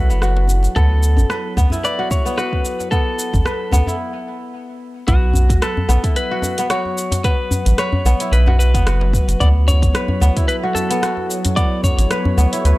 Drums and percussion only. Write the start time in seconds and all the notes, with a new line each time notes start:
0.10 cabasa
0.22 cross-stick, cabasa
0.37 djembe slap
0.47 djembe tone, cabasa
0.63 djembe slap, cabasa
0.76 kick, cabasa
1.03 cabasa
1.17 djembe tone, djembe bass, cabasa
1.30 cross-stick, cabasa
1.57 kick, djembe tone, cabasa
1.70 djembe bass, cabasa
1.85 cabasa
2.11 kick, djembe tone, cabasa
2.26 cabasa
2.38 cross-stick, cabasa
2.53 kick, djembe tone
2.65 cabasa
2.80 djembe slap, cabasa
2.92 kick, cabasa
3.19 cabasa
3.33 kick, djembe tone, djembe bass, cabasa
3.46 cross-stick, djembe slap, cabasa
3.71 djembe tone, djembe bass, cabasa
3.86 djembe bass, cabasa
5.08 kick, closed hi-hat, cabasa
5.34 djembe bass, cabasa
5.50 kick, closed hi-hat, djembe tone, cabasa
5.62 cross-stick, closed hi-hat, cabasa
5.77 djembe bass
5.89 djembe tone, cabasa
6.04 kick, closed hi-hat, cabasa
6.16 closed hi-hat, cabasa
6.42 djembe tone, cabasa
6.58 closed hi-hat, cabasa
6.70 cross-stick, closed hi-hat, cabasa
6.85 djembe tone
6.98 cabasa
7.12 closed hi-hat, djembe slap, djembe bass, cabasa
7.24 kick, closed hi-hat, cabasa
7.51 djembe bass, cabasa
7.65 closed hi-hat, djembe tone, cabasa
7.78 cross-stick, closed hi-hat, cabasa
7.93 djembe bass
8.06 cabasa
8.20 closed hi-hat, cabasa
8.33 closed hi-hat, cabasa
8.46 cross-stick, djembe slap, djembe bass
8.60 cabasa
8.74 kick, closed hi-hat, cabasa
8.87 cross-stick, closed hi-hat, cabasa
9.01 djembe slap
9.13 kick, djembe tone, cabasa
9.28 closed hi-hat, djembe slap, cabasa
9.40 kick, closed hi-hat, cabasa
9.68 djembe bass, cabasa
9.82 kick, closed hi-hat, djembe tone, cabasa
9.94 cross-stick, closed hi-hat, djembe slap, cabasa
10.08 djembe bass
10.20 djembe tone, cabasa
10.37 kick, closed hi-hat, cabasa
10.49 closed hi-hat, cabasa
10.75 djembe tone, cabasa
10.91 closed hi-hat, cabasa
11.03 cross-stick, closed hi-hat, cabasa
11.17 djembe tone
11.31 cabasa
11.45 closed hi-hat, djembe slap, djembe bass, cabasa
11.57 kick, closed hi-hat, cabasa
11.84 kick, djembe bass, cabasa
11.99 closed hi-hat, djembe tone, cabasa
12.11 cross-stick, closed hi-hat, djembe slap, cabasa
12.25 djembe bass
12.38 cabasa
12.53 closed hi-hat, cabasa
12.65 closed hi-hat, cabasa